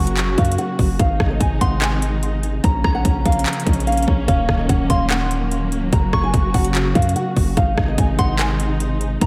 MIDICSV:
0, 0, Header, 1, 6, 480
1, 0, Start_track
1, 0, Tempo, 410959
1, 1161, Time_signature, 4, 2, 24, 8
1, 10822, End_track
2, 0, Start_track
2, 0, Title_t, "Synth bell"
2, 0, Program_c, 0, 98
2, 0, Note_on_c, 0, 85, 72
2, 1116, Note_off_c, 0, 85, 0
2, 1881, Note_on_c, 0, 84, 89
2, 2109, Note_off_c, 0, 84, 0
2, 3321, Note_on_c, 0, 82, 83
2, 4954, Note_off_c, 0, 82, 0
2, 5722, Note_on_c, 0, 84, 79
2, 5950, Note_off_c, 0, 84, 0
2, 7164, Note_on_c, 0, 85, 71
2, 8796, Note_off_c, 0, 85, 0
2, 9562, Note_on_c, 0, 84, 90
2, 9790, Note_off_c, 0, 84, 0
2, 10822, End_track
3, 0, Start_track
3, 0, Title_t, "Nylon-string guitar"
3, 0, Program_c, 1, 24
3, 0, Note_on_c, 1, 78, 79
3, 413, Note_off_c, 1, 78, 0
3, 445, Note_on_c, 1, 77, 76
3, 632, Note_off_c, 1, 77, 0
3, 682, Note_on_c, 1, 78, 92
3, 870, Note_off_c, 1, 78, 0
3, 1164, Note_on_c, 1, 77, 86
3, 1501, Note_off_c, 1, 77, 0
3, 1525, Note_on_c, 1, 75, 84
3, 1618, Note_off_c, 1, 75, 0
3, 1636, Note_on_c, 1, 80, 88
3, 1826, Note_off_c, 1, 80, 0
3, 1880, Note_on_c, 1, 78, 75
3, 2069, Note_off_c, 1, 78, 0
3, 2120, Note_on_c, 1, 80, 97
3, 3034, Note_off_c, 1, 80, 0
3, 3080, Note_on_c, 1, 82, 96
3, 3419, Note_off_c, 1, 82, 0
3, 3442, Note_on_c, 1, 78, 82
3, 3536, Note_off_c, 1, 78, 0
3, 3802, Note_on_c, 1, 77, 77
3, 4253, Note_off_c, 1, 77, 0
3, 4276, Note_on_c, 1, 75, 70
3, 4466, Note_off_c, 1, 75, 0
3, 4521, Note_on_c, 1, 77, 77
3, 4710, Note_off_c, 1, 77, 0
3, 4998, Note_on_c, 1, 77, 87
3, 5338, Note_off_c, 1, 77, 0
3, 5363, Note_on_c, 1, 75, 74
3, 5456, Note_off_c, 1, 75, 0
3, 5480, Note_on_c, 1, 78, 84
3, 5669, Note_off_c, 1, 78, 0
3, 5722, Note_on_c, 1, 77, 75
3, 5910, Note_off_c, 1, 77, 0
3, 5963, Note_on_c, 1, 78, 88
3, 6876, Note_off_c, 1, 78, 0
3, 6921, Note_on_c, 1, 82, 96
3, 7259, Note_off_c, 1, 82, 0
3, 7283, Note_on_c, 1, 80, 82
3, 7376, Note_off_c, 1, 80, 0
3, 7641, Note_on_c, 1, 78, 79
3, 8092, Note_off_c, 1, 78, 0
3, 8124, Note_on_c, 1, 77, 79
3, 8311, Note_off_c, 1, 77, 0
3, 8361, Note_on_c, 1, 78, 89
3, 8550, Note_off_c, 1, 78, 0
3, 8844, Note_on_c, 1, 77, 85
3, 9181, Note_off_c, 1, 77, 0
3, 9206, Note_on_c, 1, 75, 84
3, 9299, Note_off_c, 1, 75, 0
3, 9317, Note_on_c, 1, 80, 87
3, 9507, Note_off_c, 1, 80, 0
3, 9559, Note_on_c, 1, 78, 76
3, 9748, Note_off_c, 1, 78, 0
3, 9800, Note_on_c, 1, 80, 102
3, 10714, Note_off_c, 1, 80, 0
3, 10760, Note_on_c, 1, 82, 95
3, 10822, Note_off_c, 1, 82, 0
3, 10822, End_track
4, 0, Start_track
4, 0, Title_t, "String section"
4, 0, Program_c, 2, 48
4, 0, Note_on_c, 2, 49, 78
4, 0, Note_on_c, 2, 54, 73
4, 0, Note_on_c, 2, 58, 73
4, 0, Note_on_c, 2, 66, 86
4, 1123, Note_off_c, 2, 54, 0
4, 1123, Note_off_c, 2, 58, 0
4, 1142, Note_off_c, 2, 66, 0
4, 1143, Note_off_c, 2, 49, 0
4, 1162, Note_on_c, 2, 48, 79
4, 1162, Note_on_c, 2, 51, 72
4, 1162, Note_on_c, 2, 56, 73
4, 1162, Note_on_c, 2, 63, 89
4, 3062, Note_off_c, 2, 51, 0
4, 3062, Note_off_c, 2, 56, 0
4, 3063, Note_off_c, 2, 48, 0
4, 3063, Note_off_c, 2, 63, 0
4, 3082, Note_on_c, 2, 49, 82
4, 3082, Note_on_c, 2, 53, 76
4, 3082, Note_on_c, 2, 58, 77
4, 3082, Note_on_c, 2, 61, 89
4, 4983, Note_off_c, 2, 49, 0
4, 4983, Note_off_c, 2, 53, 0
4, 5002, Note_on_c, 2, 54, 71
4, 5003, Note_on_c, 2, 51, 79
4, 6883, Note_off_c, 2, 61, 0
4, 6903, Note_off_c, 2, 51, 0
4, 6922, Note_on_c, 2, 49, 82
4, 6922, Note_on_c, 2, 66, 87
4, 8795, Note_off_c, 2, 58, 0
4, 8803, Note_off_c, 2, 54, 0
4, 8823, Note_off_c, 2, 49, 0
4, 8823, Note_off_c, 2, 66, 0
4, 8842, Note_on_c, 2, 48, 82
4, 8842, Note_on_c, 2, 51, 76
4, 8842, Note_on_c, 2, 56, 73
4, 8842, Note_on_c, 2, 63, 89
4, 10742, Note_off_c, 2, 48, 0
4, 10742, Note_off_c, 2, 63, 0
4, 10743, Note_off_c, 2, 51, 0
4, 10743, Note_off_c, 2, 56, 0
4, 10761, Note_on_c, 2, 65, 90
4, 10762, Note_on_c, 2, 49, 80
4, 10762, Note_on_c, 2, 53, 73
4, 10762, Note_on_c, 2, 58, 75
4, 10822, Note_off_c, 2, 49, 0
4, 10822, Note_off_c, 2, 53, 0
4, 10822, Note_off_c, 2, 58, 0
4, 10822, Note_off_c, 2, 65, 0
4, 10822, End_track
5, 0, Start_track
5, 0, Title_t, "808-style bass"
5, 0, Program_c, 3, 38
5, 0, Note_on_c, 3, 30, 106
5, 422, Note_off_c, 3, 30, 0
5, 441, Note_on_c, 3, 42, 101
5, 672, Note_off_c, 3, 42, 0
5, 923, Note_on_c, 3, 30, 103
5, 1152, Note_off_c, 3, 30, 0
5, 1161, Note_on_c, 3, 32, 117
5, 1392, Note_off_c, 3, 32, 0
5, 1401, Note_on_c, 3, 32, 106
5, 1631, Note_off_c, 3, 32, 0
5, 1642, Note_on_c, 3, 32, 106
5, 1872, Note_off_c, 3, 32, 0
5, 1882, Note_on_c, 3, 32, 109
5, 3035, Note_off_c, 3, 32, 0
5, 3082, Note_on_c, 3, 34, 118
5, 3312, Note_off_c, 3, 34, 0
5, 3321, Note_on_c, 3, 34, 106
5, 3552, Note_off_c, 3, 34, 0
5, 3561, Note_on_c, 3, 34, 108
5, 3792, Note_off_c, 3, 34, 0
5, 3802, Note_on_c, 3, 34, 109
5, 4032, Note_off_c, 3, 34, 0
5, 4281, Note_on_c, 3, 34, 103
5, 4742, Note_off_c, 3, 34, 0
5, 4762, Note_on_c, 3, 34, 109
5, 4992, Note_off_c, 3, 34, 0
5, 5001, Note_on_c, 3, 27, 115
5, 5232, Note_off_c, 3, 27, 0
5, 5241, Note_on_c, 3, 27, 108
5, 5472, Note_off_c, 3, 27, 0
5, 5481, Note_on_c, 3, 27, 111
5, 5712, Note_off_c, 3, 27, 0
5, 5721, Note_on_c, 3, 27, 108
5, 6681, Note_on_c, 3, 25, 98
5, 6699, Note_off_c, 3, 27, 0
5, 6909, Note_off_c, 3, 25, 0
5, 6921, Note_on_c, 3, 30, 116
5, 7152, Note_off_c, 3, 30, 0
5, 7161, Note_on_c, 3, 30, 105
5, 7392, Note_off_c, 3, 30, 0
5, 7401, Note_on_c, 3, 30, 106
5, 7632, Note_off_c, 3, 30, 0
5, 7642, Note_on_c, 3, 30, 109
5, 8102, Note_off_c, 3, 30, 0
5, 8121, Note_on_c, 3, 42, 107
5, 8352, Note_off_c, 3, 42, 0
5, 8603, Note_on_c, 3, 30, 108
5, 8833, Note_off_c, 3, 30, 0
5, 8842, Note_on_c, 3, 32, 116
5, 9072, Note_off_c, 3, 32, 0
5, 9082, Note_on_c, 3, 32, 101
5, 9312, Note_off_c, 3, 32, 0
5, 9322, Note_on_c, 3, 32, 107
5, 9552, Note_off_c, 3, 32, 0
5, 9562, Note_on_c, 3, 32, 109
5, 10715, Note_off_c, 3, 32, 0
5, 10762, Note_on_c, 3, 34, 118
5, 10822, Note_off_c, 3, 34, 0
5, 10822, End_track
6, 0, Start_track
6, 0, Title_t, "Drums"
6, 82, Note_on_c, 9, 42, 85
6, 198, Note_off_c, 9, 42, 0
6, 201, Note_on_c, 9, 39, 121
6, 201, Note_on_c, 9, 42, 70
6, 318, Note_off_c, 9, 39, 0
6, 318, Note_off_c, 9, 42, 0
6, 441, Note_on_c, 9, 36, 100
6, 442, Note_on_c, 9, 42, 50
6, 522, Note_off_c, 9, 42, 0
6, 522, Note_on_c, 9, 42, 70
6, 558, Note_off_c, 9, 36, 0
6, 602, Note_off_c, 9, 42, 0
6, 602, Note_on_c, 9, 42, 83
6, 682, Note_off_c, 9, 42, 0
6, 682, Note_on_c, 9, 42, 81
6, 799, Note_off_c, 9, 42, 0
6, 922, Note_on_c, 9, 36, 99
6, 922, Note_on_c, 9, 46, 51
6, 1039, Note_off_c, 9, 36, 0
6, 1039, Note_off_c, 9, 46, 0
6, 1162, Note_on_c, 9, 36, 125
6, 1162, Note_on_c, 9, 42, 78
6, 1278, Note_off_c, 9, 36, 0
6, 1279, Note_off_c, 9, 42, 0
6, 1401, Note_on_c, 9, 36, 92
6, 1401, Note_on_c, 9, 37, 104
6, 1518, Note_off_c, 9, 36, 0
6, 1518, Note_off_c, 9, 37, 0
6, 1642, Note_on_c, 9, 36, 110
6, 1642, Note_on_c, 9, 42, 92
6, 1758, Note_off_c, 9, 36, 0
6, 1759, Note_off_c, 9, 42, 0
6, 1882, Note_on_c, 9, 36, 97
6, 1882, Note_on_c, 9, 42, 79
6, 1999, Note_off_c, 9, 36, 0
6, 1999, Note_off_c, 9, 42, 0
6, 2122, Note_on_c, 9, 39, 119
6, 2122, Note_on_c, 9, 42, 74
6, 2239, Note_off_c, 9, 39, 0
6, 2239, Note_off_c, 9, 42, 0
6, 2362, Note_on_c, 9, 42, 84
6, 2479, Note_off_c, 9, 42, 0
6, 2602, Note_on_c, 9, 42, 81
6, 2719, Note_off_c, 9, 42, 0
6, 2841, Note_on_c, 9, 42, 74
6, 2958, Note_off_c, 9, 42, 0
6, 3081, Note_on_c, 9, 42, 79
6, 3082, Note_on_c, 9, 36, 124
6, 3198, Note_off_c, 9, 36, 0
6, 3198, Note_off_c, 9, 42, 0
6, 3321, Note_on_c, 9, 36, 93
6, 3321, Note_on_c, 9, 37, 99
6, 3438, Note_off_c, 9, 36, 0
6, 3438, Note_off_c, 9, 37, 0
6, 3561, Note_on_c, 9, 36, 113
6, 3562, Note_on_c, 9, 42, 96
6, 3678, Note_off_c, 9, 36, 0
6, 3678, Note_off_c, 9, 42, 0
6, 3802, Note_on_c, 9, 36, 98
6, 3802, Note_on_c, 9, 42, 68
6, 3881, Note_off_c, 9, 42, 0
6, 3881, Note_on_c, 9, 42, 68
6, 3919, Note_off_c, 9, 36, 0
6, 3962, Note_off_c, 9, 42, 0
6, 3962, Note_on_c, 9, 42, 72
6, 4041, Note_off_c, 9, 42, 0
6, 4041, Note_on_c, 9, 39, 116
6, 4041, Note_on_c, 9, 42, 68
6, 4121, Note_off_c, 9, 42, 0
6, 4121, Note_on_c, 9, 42, 68
6, 4158, Note_off_c, 9, 39, 0
6, 4202, Note_off_c, 9, 42, 0
6, 4202, Note_on_c, 9, 42, 71
6, 4281, Note_off_c, 9, 42, 0
6, 4281, Note_on_c, 9, 36, 97
6, 4281, Note_on_c, 9, 42, 70
6, 4361, Note_off_c, 9, 42, 0
6, 4361, Note_on_c, 9, 42, 70
6, 4398, Note_off_c, 9, 36, 0
6, 4442, Note_off_c, 9, 42, 0
6, 4442, Note_on_c, 9, 42, 69
6, 4522, Note_off_c, 9, 42, 0
6, 4522, Note_on_c, 9, 42, 50
6, 4582, Note_off_c, 9, 42, 0
6, 4582, Note_on_c, 9, 42, 61
6, 4642, Note_off_c, 9, 42, 0
6, 4642, Note_on_c, 9, 42, 71
6, 4701, Note_off_c, 9, 42, 0
6, 4701, Note_on_c, 9, 42, 81
6, 4762, Note_on_c, 9, 36, 97
6, 4818, Note_off_c, 9, 42, 0
6, 4879, Note_off_c, 9, 36, 0
6, 5001, Note_on_c, 9, 36, 124
6, 5001, Note_on_c, 9, 42, 83
6, 5118, Note_off_c, 9, 36, 0
6, 5118, Note_off_c, 9, 42, 0
6, 5241, Note_on_c, 9, 36, 91
6, 5241, Note_on_c, 9, 37, 103
6, 5357, Note_off_c, 9, 36, 0
6, 5358, Note_off_c, 9, 37, 0
6, 5481, Note_on_c, 9, 36, 112
6, 5481, Note_on_c, 9, 42, 92
6, 5598, Note_off_c, 9, 36, 0
6, 5598, Note_off_c, 9, 42, 0
6, 5721, Note_on_c, 9, 42, 83
6, 5722, Note_on_c, 9, 36, 97
6, 5838, Note_off_c, 9, 36, 0
6, 5838, Note_off_c, 9, 42, 0
6, 5961, Note_on_c, 9, 39, 118
6, 5961, Note_on_c, 9, 42, 74
6, 6078, Note_off_c, 9, 39, 0
6, 6078, Note_off_c, 9, 42, 0
6, 6201, Note_on_c, 9, 42, 81
6, 6318, Note_off_c, 9, 42, 0
6, 6441, Note_on_c, 9, 42, 83
6, 6558, Note_off_c, 9, 42, 0
6, 6681, Note_on_c, 9, 42, 74
6, 6798, Note_off_c, 9, 42, 0
6, 6921, Note_on_c, 9, 36, 126
6, 6921, Note_on_c, 9, 42, 81
6, 7038, Note_off_c, 9, 36, 0
6, 7038, Note_off_c, 9, 42, 0
6, 7161, Note_on_c, 9, 36, 90
6, 7161, Note_on_c, 9, 37, 104
6, 7278, Note_off_c, 9, 36, 0
6, 7278, Note_off_c, 9, 37, 0
6, 7401, Note_on_c, 9, 36, 114
6, 7401, Note_on_c, 9, 42, 94
6, 7518, Note_off_c, 9, 36, 0
6, 7518, Note_off_c, 9, 42, 0
6, 7642, Note_on_c, 9, 36, 95
6, 7642, Note_on_c, 9, 42, 51
6, 7642, Note_on_c, 9, 46, 65
6, 7758, Note_off_c, 9, 42, 0
6, 7758, Note_off_c, 9, 46, 0
6, 7759, Note_off_c, 9, 36, 0
6, 7761, Note_on_c, 9, 42, 85
6, 7878, Note_off_c, 9, 42, 0
6, 7882, Note_on_c, 9, 39, 116
6, 7882, Note_on_c, 9, 42, 72
6, 7999, Note_off_c, 9, 39, 0
6, 7999, Note_off_c, 9, 42, 0
6, 8121, Note_on_c, 9, 36, 96
6, 8122, Note_on_c, 9, 42, 51
6, 8202, Note_off_c, 9, 42, 0
6, 8202, Note_on_c, 9, 42, 68
6, 8238, Note_off_c, 9, 36, 0
6, 8282, Note_off_c, 9, 42, 0
6, 8282, Note_on_c, 9, 42, 83
6, 8362, Note_off_c, 9, 42, 0
6, 8362, Note_on_c, 9, 42, 84
6, 8479, Note_off_c, 9, 42, 0
6, 8602, Note_on_c, 9, 46, 54
6, 8603, Note_on_c, 9, 36, 101
6, 8719, Note_off_c, 9, 36, 0
6, 8719, Note_off_c, 9, 46, 0
6, 8842, Note_on_c, 9, 36, 127
6, 8842, Note_on_c, 9, 42, 78
6, 8959, Note_off_c, 9, 36, 0
6, 8959, Note_off_c, 9, 42, 0
6, 9081, Note_on_c, 9, 36, 89
6, 9082, Note_on_c, 9, 37, 106
6, 9198, Note_off_c, 9, 36, 0
6, 9198, Note_off_c, 9, 37, 0
6, 9322, Note_on_c, 9, 36, 114
6, 9322, Note_on_c, 9, 42, 96
6, 9438, Note_off_c, 9, 36, 0
6, 9439, Note_off_c, 9, 42, 0
6, 9562, Note_on_c, 9, 36, 95
6, 9562, Note_on_c, 9, 42, 84
6, 9679, Note_off_c, 9, 36, 0
6, 9679, Note_off_c, 9, 42, 0
6, 9802, Note_on_c, 9, 39, 116
6, 9802, Note_on_c, 9, 42, 75
6, 9918, Note_off_c, 9, 39, 0
6, 9918, Note_off_c, 9, 42, 0
6, 10041, Note_on_c, 9, 42, 83
6, 10158, Note_off_c, 9, 42, 0
6, 10282, Note_on_c, 9, 42, 84
6, 10398, Note_off_c, 9, 42, 0
6, 10521, Note_on_c, 9, 42, 76
6, 10638, Note_off_c, 9, 42, 0
6, 10761, Note_on_c, 9, 42, 80
6, 10762, Note_on_c, 9, 36, 121
6, 10822, Note_off_c, 9, 36, 0
6, 10822, Note_off_c, 9, 42, 0
6, 10822, End_track
0, 0, End_of_file